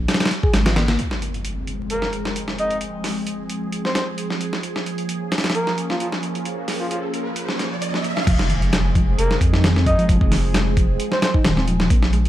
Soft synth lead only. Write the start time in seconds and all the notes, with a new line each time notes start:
1.90 A#4
2.59 D#5
3.84 C5
3.95 C5
5.54 A#4
5.89 F4
6.00 F4
6.80 F4
6.91 F4
9.18 A#4
9.86 D#5
11.12 C5
11.22 C5